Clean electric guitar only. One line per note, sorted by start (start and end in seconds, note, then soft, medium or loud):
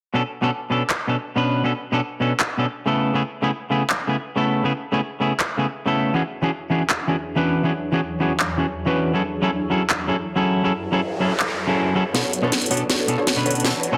0.14 0.21 B2 medium
0.14 0.21 B3 medium
0.14 0.22 C#4 medium
0.14 0.22 D4 medium
0.14 0.22 A4 medium
0.42 0.49 B2 loud
0.42 0.49 B3 medium
0.42 0.50 C#4 medium
0.42 0.50 D4 medium
0.42 0.50 A4 loud
0.70 0.81 B2 medium
0.70 0.82 B3 medium
0.70 0.82 C#4 medium
0.70 0.82 D4 medium
0.70 0.82 A4 medium
1.07 1.15 B2 medium
1.07 1.15 B3 medium
1.07 1.15 C#4 medium
1.07 1.16 D4 medium
1.07 1.16 A4 medium
1.36 1.62 B2 medium
1.36 1.62 B3 medium
1.36 1.62 C#4 medium
1.36 1.63 D4 medium
1.36 1.63 B4 medium
1.64 1.71 B2 medium
1.64 1.71 B3 medium
1.64 1.72 C#4 medium
1.64 1.72 D4 medium
1.64 1.72 A4 medium
1.92 1.99 B2 medium
1.92 1.99 B3 medium
1.92 2.00 C#4 medium
1.92 2.00 D4 medium
1.92 2.00 A4 loud
2.20 2.31 B2 medium
2.20 2.32 B3 medium
2.20 2.32 C#4 medium
2.20 2.32 D4 medium
2.20 2.33 A4 medium
2.57 2.65 B2 medium
2.57 2.65 B3 medium
2.57 2.65 C#4 medium
2.57 2.66 D4 medium
2.57 2.66 A4 medium
2.86 3.12 C#3 medium
2.86 3.12 A3 medium
2.86 3.12 B3 medium
2.86 3.13 E4 medium
2.86 3.13 A4 loud
3.14 3.21 C#3 medium
3.14 3.21 A3 medium
3.14 3.22 B3 medium
3.14 3.22 E4 medium
3.14 3.22 G#4 medium
3.42 3.49 C#3 medium
3.42 3.49 A3 medium
3.42 3.50 B3 medium
3.42 3.50 E4 medium
3.42 3.50 G#4 loud
3.70 3.82 C#3 medium
3.70 3.82 A3 medium
3.70 3.82 B3 medium
3.70 3.82 E4 medium
3.70 3.82 G#4 medium
4.07 4.15 C#3 medium
4.07 4.15 A3 medium
4.07 4.15 B3 medium
4.07 4.16 E4 medium
4.07 4.16 G#4 medium
4.36 4.62 C#3 medium
4.36 4.62 A3 medium
4.36 4.62 B3 medium
4.36 4.63 E4 medium
4.36 4.63 A4 loud
4.64 4.71 C#3 medium
4.64 4.71 A3 medium
4.64 4.72 B3 medium
4.64 4.72 E4 medium
4.64 4.72 G#4 medium
4.92 4.99 C#3 medium
4.92 4.99 A3 medium
4.92 5.00 B3 medium
4.92 5.00 E4 medium
4.92 5.00 G#4 loud
5.20 5.31 C#3 medium
5.20 5.32 A3 medium
5.20 5.32 B3 medium
5.20 5.32 E4 medium
5.20 5.32 G#4 medium
5.57 5.65 C#3 medium
5.57 5.65 A3 medium
5.57 5.65 B3 medium
5.57 5.66 E4 medium
5.57 5.66 G#4 medium
5.86 6.12 C#3 medium
5.86 6.12 A3 medium
5.86 6.12 B3 medium
5.86 6.13 E4 medium
5.86 6.13 A4 loud
6.14 6.21 E3 medium
6.14 6.21 B3 medium
6.14 6.21 C#4 medium
6.14 6.22 D4 medium
6.14 6.22 F#4 medium
6.14 6.22 G#4 medium
6.42 6.49 E3 medium
6.42 6.49 B3 medium
6.42 6.50 C#4 medium
6.42 6.50 D4 medium
6.42 6.50 F#4 medium
6.42 6.50 G#4 loud
6.70 6.81 E3 medium
6.70 6.82 B3 medium
6.70 6.82 C#4 medium
6.70 6.82 D4 medium
6.70 6.82 F#4 medium
6.70 6.82 G#4 medium
7.07 7.15 E3 medium
7.07 7.15 B3 medium
7.07 7.15 C#4 medium
7.07 7.15 D4 medium
7.07 7.16 F#4 medium
7.07 7.16 G#4 medium
7.36 7.62 E3 medium
7.36 7.62 B3 medium
7.36 7.62 C#4 medium
7.36 7.62 D4 medium
7.36 7.63 F#4 medium
7.36 7.63 B4 loud
7.63 7.71 E3 medium
7.63 7.71 B3 medium
7.63 7.71 C#4 medium
7.63 7.72 D4 medium
7.63 7.72 F#4 medium
7.63 7.72 G#4 medium
7.92 7.99 E3 loud
7.92 7.99 B3 medium
7.92 8.00 C#4 medium
7.92 8.00 D4 medium
7.92 8.00 F#4 medium
7.92 8.00 G#4 loud
8.20 8.31 E3 medium
8.20 8.32 B3 medium
8.20 8.32 C#4 medium
8.20 8.32 D4 medium
8.20 8.32 F#4 medium
8.20 8.32 G#4 medium
8.57 8.65 E3 medium
8.57 8.65 B3 medium
8.57 8.65 C#4 medium
8.57 8.65 D4 medium
8.57 8.66 F#4 medium
8.57 8.66 G#4 medium
8.85 9.12 E3 medium
8.85 9.12 B3 medium
8.85 9.12 C#4 medium
8.85 9.12 D4 medium
8.85 9.13 F#4 medium
8.85 9.13 B4 loud
9.14 9.21 F#3 medium
9.14 9.21 C#4 medium
9.14 9.22 E4 medium
9.14 9.22 G#4 medium
9.14 9.22 A4 medium
9.42 9.49 F#3 loud
9.42 9.49 C#4 medium
9.42 9.50 E4 medium
9.42 9.50 G#4 medium
9.42 9.50 A4 loud
9.70 9.81 F#3 medium
9.70 9.82 C#4 medium
9.70 9.82 E4 medium
9.70 9.82 G#4 medium
9.70 9.82 A4 medium
10.07 10.15 F#3 medium
10.07 10.15 C#4 medium
10.07 10.15 E4 medium
10.07 10.16 G#4 medium
10.07 10.16 A4 medium
10.36 10.62 F#3 medium
10.36 10.62 C#4 medium
10.36 10.62 E4 medium
10.36 10.63 G#4 medium
10.36 10.63 A4 loud
10.64 10.71 F#3 medium
10.64 10.71 C#4 medium
10.64 10.72 E4 medium
10.64 10.72 G#4 medium
10.64 10.72 A4 medium
10.92 10.99 F#3 medium
10.92 10.99 C#4 medium
10.92 11.00 E4 medium
10.92 11.00 G#4 medium
10.92 11.00 A4 loud
11.20 11.31 F#3 medium
11.20 11.32 C#4 medium
11.20 11.32 E4 medium
11.20 11.32 G#4 medium
11.20 11.32 A4 medium
11.67 11.93 F#3 medium
11.67 11.93 C#4 medium
11.67 11.94 E4 medium
11.67 11.94 G#4 medium
11.67 11.94 A4 loud
11.95 12.02 F#3 medium
11.95 12.03 C#4 medium
11.95 12.03 E4 medium
11.95 12.03 G#4 medium
11.95 12.03 A4 loud
12.14 12.21 B2 medium
12.14 12.21 B3 medium
12.14 12.22 C#4 medium
12.14 12.22 D4 medium
12.14 12.22 A4 medium
12.42 12.49 B2 loud
12.42 12.49 B3 medium
12.42 12.50 C#4 medium
12.42 12.50 D4 medium
12.42 12.50 A4 loud
12.70 12.82 B2 medium
12.70 12.82 B3 medium
12.70 12.82 C#4 medium
12.70 12.82 D4 medium
12.70 12.82 A4 medium
13.07 13.15 B2 medium
13.07 13.15 B3 medium
13.07 13.15 C#4 medium
13.07 13.16 D4 medium
13.07 13.16 A4 medium
13.36 13.62 B2 medium
13.36 13.62 B3 medium
13.36 13.62 C#4 medium
13.36 13.63 D4 medium
13.36 13.63 B4 loud
13.64 13.71 B2 medium
13.64 13.71 B3 medium
13.64 13.72 C#4 medium
13.64 13.72 D4 medium
13.64 13.72 A4 medium
13.92 13.97 B2 loud
13.92 13.97 B3 medium
13.92 13.97 C#4 medium
13.92 13.97 D4 medium
13.92 13.97 A4 loud